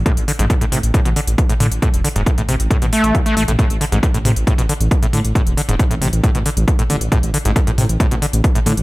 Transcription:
<<
  \new Staff \with { instrumentName = "Acid bass" } { \clef bass \time 4/4 \key a \minor \tempo 4 = 136 a,16 r16 d16 gis,16 a,16 a,16 c16 r16 a,16 b,16 d16 r8 a,16 d16 r16 | a,16 r16 d16 gis,16 a,16 a,16 c16 r16 a,16 b,16 a8 a,,16 a16 a16 a,16 | a,16 r16 d16 gis,16 a,16 a,16 c16 r16 a,16 b,16 d16 r8 a,16 d16 r16 | a,16 r16 d16 gis,16 a,16 a,16 c16 r16 a,16 b,16 d16 r8 a,16 d16 r16 |
a,16 r16 d16 gis,16 a,16 a,16 c16 r16 a,16 b,16 d16 r8 a,16 d16 r16 | }
  \new Staff \with { instrumentName = "Detuned saw bass" } { \clef bass \time 4/4 \key a \minor r16 a,,16 r16 a,,16 r16 a,,16 a,16 a,,16 r16 a,,16 r16 a,,16 r8 a,16 a,,16 | r16 e,,16 r16 e,,16 r16 a,,16 a,,16 a,,16 r16 a,,16 r16 a,,16 r8 a,,16 a,,16 | r16 a,,16 r16 a,,16 r16 a,,16 a,16 a,,16 r16 a,,16 r16 a,,16 r8 a,16 a,,16 | r16 e,,16 r16 e,,16 r16 a,,16 a,,16 a,,16 r16 a,,16 r16 a,,16 r8 a,,16 a,,16 |
r16 a,,16 r16 a,,16 r16 a,,16 a,16 a,,16 r16 a,,16 r16 a,,16 r8 a,16 a,,16 | }
  \new DrumStaff \with { instrumentName = "Drums" } \drummode { \time 4/4 <hh bd>16 hh16 hho16 hh16 <hh bd>16 hh16 hho16 hh16 <hh bd>16 hh16 hho16 hh16 <hh bd>16 hh16 hho16 hh16 | <hh bd>16 hh16 hho16 hh16 <hh bd>16 hh16 hho16 hh16 <hh bd>16 hh16 hho16 hh16 <hh bd>16 hh16 hho16 hh16 | <hh bd>16 hh16 hho16 hh16 <hh bd>16 hh16 hho16 hh16 <hh bd>16 hh16 hho16 hh16 <hh bd>16 hh16 hho16 hh16 | <hh bd>16 hh16 hho16 hh16 <hh bd>16 hh16 hho16 hh16 <hh bd>16 hh16 hho16 hh16 <hh bd>16 hh16 hho16 hh16 |
<hh bd>16 hh16 hho16 hh16 <hh bd>16 hh16 hho16 hh16 <hh bd>16 hh16 hho16 hh16 <hh bd>16 hh16 hho16 hh16 | }
>>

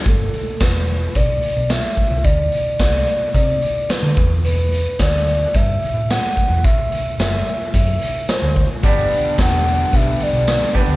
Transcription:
<<
  \new Staff \with { instrumentName = "Soft synth lead" } { \time 4/4 \key g \major \tempo 4 = 109 a'4 b'4 d''4 e''4 | d''4 d''4 d''4 b'8. r16 | b'4 d''4 e''4 fis''4 | e''4 e''4 e''4 c''8. r16 |
d''4 fis''4 e''8 d''4 b'8 | }
  \new Staff \with { instrumentName = "Clean electric guitar" } { \time 4/4 \key g \major r1 | r1 | r1 | r1 |
<g, d g b d' g'>2.~ <g, d g b d' g'>8 <g, d g b d' g'>8 | }
  \new Staff \with { instrumentName = "Distorted electric guitar" } { \clef bass \time 4/4 \key g \major r1 | r1 | r1 | r1 |
<g, d g b d'>4. <g, d g b d'>2~ <g, d g b d'>8 | }
  \new Staff \with { instrumentName = "Picked electric bass" } { \clef bass \time 4/4 \key g \major g,,8 r8 e,,4 b,,8 r16 b,,8 r8 c,16 | d,8 r8 c,8 r8 c8 r8. d16 e,8~ | e,4 d,4 g,8 r16 a,8 r8 e,16 | a,,8 r8 fis,,8 r8 fis,8 r8. d,8 r16 |
g,,8 r8 e,,4 b,,8 r16 b,,8 r8 d,16 | }
  \new DrumStaff \with { instrumentName = "Drums" } \drummode { \time 4/4 <hh bd>8 hh8 <hh bd sn tamb>8 hh8 <hh bd>8 hh8 <hh sn tamb>8 <hh bd>8 | <hh bd>8 hh8 <hh bd sn tamb>8 hh8 <hh bd>8 hh8 <hh sn tamb>8 <hh bd>8 | hh8 hh8 <hh bd sn tamb>8 hh8 <hh bd>8 hh8 <hh sn tamb>8 <hh bd>8 | <hh bd>8 hh8 <hh sn tamb>8 hh8 <hh bd>8 hh8 <hh sn tamb>8 <hh bd>8 |
<hh bd>8 hh8 <hh bd sn tamb>8 hh8 <hh bd>8 hh8 <hh sn tamb>8 <hh bd>8 | }
>>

